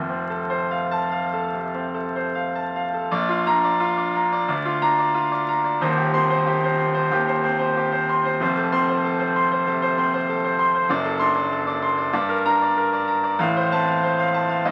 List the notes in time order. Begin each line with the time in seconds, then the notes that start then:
Already playing: F1 F2
0.09 C4
0.30 A4
0.50 C5
0.71 F5
0.91 A5
1.11 F5
1.33 A4
1.54 C3
1.74 C4
1.94 A4
2.16 C5
2.35 F5
2.55 A5
2.76 F5
2.94 A4
3.11 A#1 D5
3.29 F4
3.47 D4 A#5
3.64 D5
3.80 F4
3.97 D5
4.15 A#5
4.32 D5
4.48 D2 D5
4.65 F4
4.82 D4 A#5
4.98 D5
5.14 F4
5.32 D5
5.49 A#5
5.64 D5
5.81 D#1 D#2 C5
5.98 G4
6.14 C4 C6
6.30 C5
6.46 G4
6.64 C5
6.78 C6
6.94 C5
7.12 D#2 G4
7.28 C5
7.44 C4 C6
7.59 C5
7.77 G4
7.92 C5
8.09 C6
8.25 C5
8.40 F1 F2 C5
8.57 A4
8.72 C4 C6
8.89 C5
9.04 A4
9.19 C5
9.36 C6
9.51 C5
9.67 C3 A4
9.82 C5
9.98 C4 C6
10.14 C5
10.29 A4
10.44 C5
10.59 C6
10.75 C5
10.89 F#1 F#2 D5
11.05 A4
11.19 D4 C6
11.36 D5
11.52 A4
11.67 D5
11.82 C6
11.98 D5
12.13 G2 D5
12.29 A#4
12.46 D4 A#5
12.62 D5
12.77 A#4
12.93 D5
13.08 A#5
13.23 D5
13.39 A1 A2 F5
13.57 C5
13.72 C4 A5
13.88 F5
14.03 C5
14.19 F5
14.34 A5
14.49 F5
14.65 G2 D#5